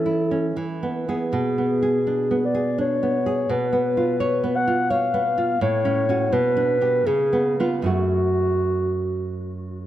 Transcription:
Already playing: E3 C#4 A4
0.06 E4
0.31 C#4
0.57 E3
0.83 B3
1.09 B3 G#4
1.32 B2 G#4
1.58 B3
1.83 G#4
2.07 D4
2.31 B3
2.45 D5
2.54 G#4
2.78 D4 C#5
3.03 B3
3.26 G#4
3.49 B2 B4
3.73 B3
3.97 F4
4.20 C#5
4.44 B3
4.56 F#5
4.67 F4
4.90 C#5 F5
5.14 B3
5.38 F4
5.61 A2 C#5
5.85 C#4
6.09 C#4 F#4
6.33 B2 B4
6.57 D4
6.81 D4 G4
7.07 C#3 G#4
7.33 B3
7.60 B3 F4
7.82 F#2 A3 F#4
7.87 F#4

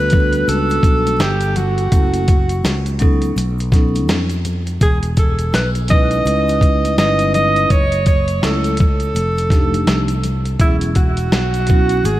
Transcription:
Already playing: D2 B4
0.10 G3 B3 D4 F#4 A4, kick, closed hi-hat, low conga, shaker
0.33 closed hi-hat, shaker
0.48 C#2 A4, closed hi-hat, high conga, shaker
0.70 closed hi-hat, shaker
0.83 B1, kick, closed hi-hat, shaker
1.07 closed hi-hat, high conga, shaker
1.19 G1 G4, snare, closed hi-hat, shaker
1.41 closed hi-hat, shaker
1.56 F#4, closed hi-hat, low conga, shaker
1.78 closed hi-hat, shaker
1.92 F#1 F#3 A3 C#4 E4 A4, kick, closed hi-hat, shaker
2.14 closed hi-hat, shaker
2.28 kick, closed hi-hat, shaker
2.49 closed hi-hat, shaker
2.64 C#2, snare, closed hi-hat, shaker
2.86 closed hi-hat, shaker
2.99 F#3 B3 C#4 D#4 A4, kick, closed hi-hat, low conga, shaker
3.22 closed hi-hat, shaker
3.36 B1, closed hi-hat, high conga, shaker
3.58 closed hi-hat, shaker
3.72 F#3 B3 C#4 D#4 A4, kick, snare, closed hi-hat, low conga, shaker
3.95 closed hi-hat, high conga, shaker
4.08 F2, snare, closed hi-hat, shaker
4.29 closed hi-hat, shaker
4.45 closed hi-hat, low conga, shaker
4.67 closed hi-hat, shaker
4.81 E1 G#4, kick, closed hi-hat, shaker
5.03 closed hi-hat, shaker
5.16 A4, kick, closed hi-hat, shaker
5.39 closed hi-hat, shaker
5.53 B1 B4, snare, closed hi-hat, shaker
5.75 closed hi-hat, shaker
5.88 G#3 C#4 D#4 E4 B4 D#5, kick, closed hi-hat, low conga, shaker
6.11 closed hi-hat, shaker
6.25 C#2, closed hi-hat, high conga, shaker
6.48 closed hi-hat, shaker
6.61 kick, closed hi-hat, shaker
6.85 closed hi-hat, high conga, shaker
6.98 G1 G#3 C#4 D#4 E4 B4 D#5, snare, closed hi-hat, shaker
7.19 closed hi-hat, shaker
7.34 D#5, closed hi-hat, low conga, shaker
7.56 closed hi-hat, shaker
7.70 F#1 C#5, kick, closed hi-hat, shaker
7.92 closed hi-hat, shaker
8.06 C#5, kick, closed hi-hat, shaker
8.28 closed hi-hat, shaker
8.42 C#2 F#3 A3 C#4 E4 A4, snare, closed hi-hat, shaker
8.64 closed hi-hat, shaker
8.77 A4, kick, closed hi-hat, low conga, shaker
9.00 closed hi-hat, shaker
9.15 F1, closed hi-hat, high conga, shaker
9.37 closed hi-hat, shaker
9.50 F3 A3 D4 D#4 G4, kick, snare, closed hi-hat, shaker
9.74 closed hi-hat, high conga, shaker
9.87 C2, snare, closed hi-hat, shaker
10.08 closed hi-hat, shaker
10.23 closed hi-hat, low conga, shaker
10.45 closed hi-hat, shaker
10.59 E1 F#3 B3 C#4 E4 G#4, kick, closed hi-hat, shaker
10.81 closed hi-hat, shaker
10.95 F#4, kick, closed hi-hat, shaker
11.17 closed hi-hat, shaker
11.32 B1, snare, closed hi-hat, shaker
11.54 closed hi-hat, shaker
11.67 F#3 B3 C#4 E4 F#4, kick, closed hi-hat, low conga, shaker
11.89 closed hi-hat, shaker
12.04 G#1 G#4, closed hi-hat, high conga, shaker

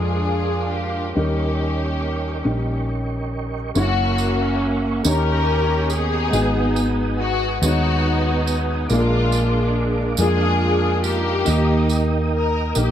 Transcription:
Already playing: F2 A#2 F3 G#3 D4 F4 G#4 A4 A#4 F5 D6
0.72 G4
1.14 D#2 D#3 G3 A#3 C#4 D#4 G4 A#4 D#5 G5 C#6
2.45 A#1 G3 C#4 D#4 G4
3.74 F#1 A#3 C#4 E4 F#4 A#4 C#5 E5 F#5 C#6, tambourine
4.18 tambourine
5.03 D#2 D#3 A#3 C#4 D#4 G4 A#4 C#5 D#5 G5, tambourine
5.08 C#4
5.90 B3 D#4 G#4, tambourine
6.31 G#1 G#2 G#3 B3 D#4 F#4 B4 F#5 G#5 D#6, tambourine
6.76 tambourine
7.20 F#4
7.61 D#2 G#3 B3 D#4 F#4 C#5, tambourine
8.47 tambourine
8.87 A#1 A#2 G#3 A#3 A#4 F5 D6, tambourine
8.92 G#3 D4 F4 G#4
8.99 A#4
9.32 tambourine
10.17 F2 G#3 A#3 D4 F4 G#4, tambourine
11.04 A#3 D#4 G4, tambourine
11.45 D#2 D#3 A#3 D#4 G4 D#5 G5 D#6, tambourine
11.89 tambourine
12.34 A#4
12.75 A#1 A#3 D#4 G4 A#4, tambourine

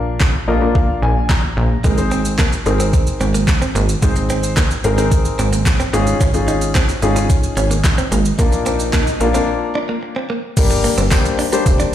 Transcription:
Already playing: A#1 A#3 D4 F4 A#4
0.20 kick, snare, clap
0.48 A#1 A#3 D4 F4 A#4 D#5
0.61 A#3 D4 F4 A#4
0.75 F5, kick
1.02 A#1 G#5
1.29 A#5, kick, snare, clap
1.57 A#1
1.84 G#1 G#3 C4 D#4 G#4 A#4, kick, shaker
1.98 C4 D#4 G#4 C5, muted clean electric guitar stroke, shaker
2.11 C4, shaker
2.25 shaker
2.39 A#3, kick, snare, clap, shaker
2.53 shaker
2.66 G#1 C4 D#4 G#4 A#4, muted clean electric guitar stroke, shaker
2.80 C4, shaker
2.93 muted clean electric guitar stroke, kick, shaker
3.07 shaker
3.21 G#1 C4, shaker
3.34 A#3, shaker
3.48 muted clean electric guitar stroke, kick, snare, clap, shaker
3.62 C4, shaker
3.75 G#1 A#3, shaker
3.89 shaker
4.02 G#1 G#3 C4 D#4 G#4 C5, kick, closed hi-hat, shaker
4.16 muted clean electric guitar stroke, shaker
4.30 C4, closed hi-hat, shaker
4.43 shaker
4.57 A#3, kick, snare, clap, closed hi-hat, shaker
4.71 shaker
4.84 G#1 C4 D#4 G#4 A#4, muted clean electric guitar stroke, closed hi-hat, shaker
4.98 C4 D#4 G#4 A#4, shaker
5.12 muted clean electric guitar stroke, kick, closed hi-hat, shaker
5.25 shaker
5.39 G#1 C4, closed hi-hat, shaker
5.53 A#3, shaker
5.66 muted clean electric guitar stroke, kick, snare, clap, closed hi-hat, shaker
5.80 C4, shaker
5.93 G#1 A#3 C#4 D#4 F4 G#4, closed hi-hat, shaker
6.07 shaker
6.21 G#1 C#4, kick, closed hi-hat, swell, shaker
6.34 C#4 D#4 F4 G#4, muted clean electric guitar stroke, shaker
6.48 D#4, closed hi-hat, shaker
6.61 shaker
6.75 C4, kick, snare, clap, closed hi-hat, shaker
6.89 shaker
7.02 G#1 C#4 D#4 F4 G#4, muted clean electric guitar stroke, closed hi-hat, shaker
7.16 C#4, shaker
7.30 muted clean electric guitar stroke, kick, closed hi-hat, shaker
7.43 shaker
7.57 G#1 C#4, closed hi-hat, shaker
7.71 A#3, shaker
7.84 muted clean electric guitar stroke, kick, snare, clap, closed hi-hat, shaker
7.98 C4, shaker
8.12 G#1 A#3, closed hi-hat, shaker
8.25 shaker
8.38 A#1 A#3 D4 F4 A#4, kick, closed hi-hat, shaker
8.52 muted clean electric guitar stroke, shaker
8.66 C4, closed hi-hat, shaker
8.80 shaker
8.93 A#3, kick, snare, clap, closed hi-hat, shaker
9.07 shaker
9.20 A#1 A#3 D4 F4 A#4, muted clean electric guitar stroke, closed hi-hat, shaker
9.34 A#3 C4 D4 F4 A#4, shaker
9.48 muted clean electric guitar stroke
9.75 D4
9.89 A#3
10.03 muted clean electric guitar stroke
10.16 C4
10.30 A#3
10.57 G1 G3 A#3 D4 G4 A#4, kick, closed hi-hat, crash, tambourine, shaker
10.70 muted clean electric guitar stroke, shaker
10.84 A#3, open hi-hat, tambourine, shaker
10.98 G1 C4, tambourine, shaker
11.11 G3 A#3 D4 G4 C5, muted clean electric guitar stroke, kick, snare, clap, closed hi-hat, tambourine, shaker
11.25 shaker
11.39 D4, open hi-hat, tambourine, shaker
11.52 G3 A#3 D4 G4 C5, shaker
11.66 F1, kick, closed hi-hat, tambourine, shaker
11.80 D4, tambourine, shaker

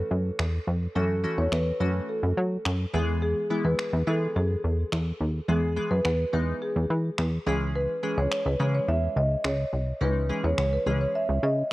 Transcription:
Already playing: E3 A3 C#4 F#4 A4
0.11 F#2
0.39 E2, finger snap
0.67 F2
0.95 F#2 E3 A3 C#4 F#4 A4
1.24 E3 A3 C#4 F#4
1.38 E2 C#5
1.52 E2 B4, finger snap
1.80 F#2 E3 A3 C#4 F#4
2.09 A4
2.23 F#2
2.37 F#3
2.65 F#2, finger snap
2.93 E2 E3 G#3 B3 G#4
3.22 G#4
3.50 E3 G#3 B3 E4
3.65 E2 B4
3.79 finger snap
3.93 E2
4.07 E3 G#3 B3 G#4 A4
4.35 F#2 G#4
4.64 E2
4.92 E2, finger snap
5.20 D#2
5.48 E2 E3 G#3 B3 G#4
5.77 E3 G#3 B3 G#4
5.91 F#2 B4
6.05 E2 B4, finger snap
6.33 E2 E3 G#3 B3 D#4
6.62 G#4
6.76 E2
6.90 E3
7.18 E2, finger snap
7.46 C#2 E3 G#3 C#4 G#4
7.75 B4
8.03 E3 G#3 C#4 G#4
8.17 C#2 C#5
8.32 C#5, finger snap
8.46 C#2 B4
8.60 C#3 E3 G#3 C#4 G#4
8.75 C#5
8.88 E2 E5
9.16 C#2 D#5
9.45 C#2 C#5, finger snap
9.73 C2
10.01 C#2 E3 G#3 C#4 D#4 B4
10.29 E3 G#3 C#4 G#4
10.44 E2 C#5
10.58 C#2 C#5, finger snap
10.73 B4
10.86 C#2 E3 G#3 C#4 G#4
11.01 C#5
11.15 E5
11.29 C#2
11.43 C#3 D#5

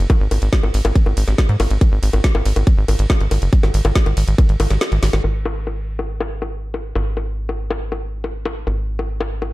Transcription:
0.10 kick, closed hi-hat, high bongo
0.20 G#1
0.31 G#1, open hi-hat, ride, high bongo
0.42 G#1, closed hi-hat
0.53 kick, snare, closed hi-hat
0.63 G#1, high bongo
0.74 G#1, open hi-hat, ride
0.85 G#1, closed hi-hat, high bongo
0.95 kick, closed hi-hat
1.06 G#1, high bongo
1.17 G#1, open hi-hat, ride
1.28 G#1, snare, closed hi-hat
1.38 kick, snare, closed hi-hat, high bongo
1.49 G#2, closed hi-hat
1.60 G#1, open hi-hat, ride, high bongo
1.70 G#1, closed hi-hat
1.81 kick, closed hi-hat, high bongo
1.92 G#1
2.03 G#1, open hi-hat, ride
2.13 G#1, closed hi-hat, high bongo
2.24 kick, snare, closed hi-hat
2.35 G#1, high bongo
2.46 G#1, open hi-hat, ride
2.56 G#1, closed hi-hat, high bongo
2.67 kick, closed hi-hat
2.78 G#1
2.88 G#1, open hi-hat, ride, high bongo
2.99 G#1, closed hi-hat
3.10 kick, snare, closed hi-hat, high bongo
3.21 G#1, closed hi-hat
3.31 G#1, open hi-hat, ride, high bongo
3.42 F#1, closed hi-hat
3.53 kick, closed hi-hat
3.63 G#1, snare, closed hi-hat, high bongo
3.74 G#1, open hi-hat, ride
3.85 G#1, closed hi-hat, high bongo
3.95 kick, snare, closed hi-hat
4.06 G#1, closed hi-hat, high bongo
4.17 G#1, open hi-hat, ride
4.28 G#1, closed hi-hat
4.38 kick, closed hi-hat, high bongo
4.49 G#1, closed hi-hat
4.60 G#1, open hi-hat, ride, high bongo
4.71 G#1, snare, closed hi-hat
4.81 snare, closed hi-hat, high bongo
4.92 G#1, closed hi-hat
5.03 G#1, snare, open hi-hat, ride
5.13 G#1, snare, closed hi-hat, high bongo
5.24 G#1, high bongo
5.45 high bongo
5.67 high bongo
5.99 high bongo
6.20 high bongo
6.42 high bongo
6.74 high bongo
6.95 G#1, high bongo
7.17 high bongo
7.49 high bongo
7.70 high bongo
7.92 high bongo
8.24 high bongo
8.45 high bongo
8.67 G#1, high bongo
8.99 high bongo
9.20 high bongo
9.42 high bongo

